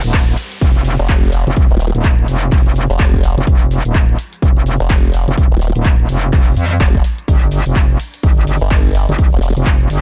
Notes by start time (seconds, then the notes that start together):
Already playing: F4 G#4 C5, downlifter
0.04 D#1, closed hi-hat, cabasa
0.14 kick, snare, clap, closed hi-hat, cabasa
0.28 closed hi-hat
0.37 closed hi-hat, open hi-hat, cabasa
0.51 closed hi-hat, cabasa
0.61 F1, kick, closed hi-hat, cabasa
0.76 closed hi-hat
0.85 closed hi-hat, open hi-hat, cabasa
0.99 F1, snare, closed hi-hat, cabasa
1.09 kick, snare, clap, closed hi-hat, cabasa
1.23 snare, closed hi-hat
1.32 closed hi-hat, open hi-hat, cabasa
1.47 F1, closed hi-hat, cabasa
1.56 F1, kick, closed hi-hat, cabasa
1.71 D#1, closed hi-hat
1.80 closed hi-hat, open hi-hat, cabasa
1.95 D#1, closed hi-hat, cabasa
2.04 kick, snare, clap, closed hi-hat, cabasa
2.19 closed hi-hat
2.28 F1, closed hi-hat, open hi-hat, cabasa
2.42 closed hi-hat, cabasa
2.52 F1, kick, clap, closed hi-hat, open hi-hat, cabasa
2.66 closed hi-hat
2.76 closed hi-hat, open hi-hat, cabasa
2.90 F1, snare, closed hi-hat, cabasa
2.99 kick, snare, clap, closed hi-hat, cabasa
3.14 kick, closed hi-hat
3.23 snare, closed hi-hat, open hi-hat, cabasa
3.38 F1, closed hi-hat, cabasa
3.47 F1 D5, kick, closed hi-hat, cabasa
3.61 closed hi-hat
3.70 snare, closed hi-hat, open hi-hat, cabasa
3.85 D#1, closed hi-hat, cabasa
3.95 kick, snare, clap, closed hi-hat, cabasa
4.09 closed hi-hat
4.18 closed hi-hat, open hi-hat, cabasa
4.33 closed hi-hat, cabasa
4.42 F1, kick, closed hi-hat, cabasa
4.56 closed hi-hat
4.66 closed hi-hat, open hi-hat, cabasa
4.80 F1, snare, closed hi-hat, cabasa
4.90 kick, snare, clap, closed hi-hat, cabasa
5.04 snare, closed hi-hat
5.14 closed hi-hat, open hi-hat, cabasa
5.28 F1, closed hi-hat, cabasa
5.38 F1, kick, closed hi-hat, cabasa
5.52 D#1, closed hi-hat
5.61 closed hi-hat, open hi-hat, cabasa
5.75 D#1, closed hi-hat, cabasa
5.85 kick, snare, clap, closed hi-hat, cabasa
5.99 closed hi-hat
6.09 F1, closed hi-hat, open hi-hat, cabasa
6.23 closed hi-hat, cabasa
6.33 F1, kick, clap, closed hi-hat, open hi-hat, cabasa
6.47 closed hi-hat
6.57 F2, closed hi-hat, open hi-hat, cabasa
6.71 snare, closed hi-hat, cabasa
6.80 F1, kick, snare, clap, closed hi-hat, cabasa
6.95 kick, closed hi-hat
7.04 snare, closed hi-hat, open hi-hat, cabasa
7.18 closed hi-hat, cabasa
7.28 G1 G3 G4 A#4, kick, closed hi-hat, cabasa
7.42 closed hi-hat
7.51 snare, closed hi-hat, open hi-hat, ride, cabasa
7.66 F1, closed hi-hat, cabasa
7.76 kick, snare, clap, closed hi-hat, cabasa
7.90 closed hi-hat
8.00 closed hi-hat, open hi-hat, ride, cabasa
8.14 closed hi-hat, cabasa
8.23 G1, kick, closed hi-hat, cabasa
8.38 closed hi-hat
8.47 closed hi-hat, open hi-hat, ride, cabasa
8.61 G1, snare, closed hi-hat, cabasa
8.70 kick, snare, clap, closed hi-hat, cabasa
8.85 snare, closed hi-hat
8.95 closed hi-hat, open hi-hat, ride, cabasa
9.09 G1, closed hi-hat, cabasa
9.18 G1, kick, closed hi-hat, cabasa
9.33 F1, closed hi-hat
9.42 closed hi-hat, open hi-hat, ride, cabasa
9.57 F1, closed hi-hat, cabasa
9.66 kick, snare, clap, closed hi-hat, cabasa
9.80 closed hi-hat
9.90 G1, closed hi-hat, open hi-hat, ride, cabasa